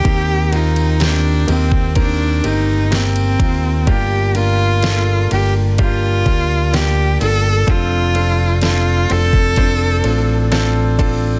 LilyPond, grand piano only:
<<
  \new Staff \with { instrumentName = "Grand piano" } { \time 4/4 \key g \minor \tempo 4 = 63 <bes c' ees' g'>8 <bes c' ees' f'>8 <bes c' g'>8 <bes c' ees' g'>8 <ees bes c' bes'>8 <bes c' ees' g'>8 <bes c' ees' g'>8 <bes c' ees' f'>8 | <bes d' f' g'>8 <bes d' f' bes'>8 <bes d' f' a'>8 <bes d' f' bes'>8 <bes d' f' g'>8 <bes d' f' g'>8 <bes d' f' g'>8 <bes d' f' a'>8 | <c' d' f' a'>8 <c' d' f' a'>8 <c' d' f' a'>8 <c' d' f' c''>8 <c' d' f' c''>8 <c' d' f' a'>8 <c' d' f' a'>8 <c' d' f' a'>8 | }
  \new Staff \with { instrumentName = "Grand piano" } { \clef bass \time 4/4 \key g \minor ees4. r2 r8 | g,4. r2 r8 | r1 | }
>>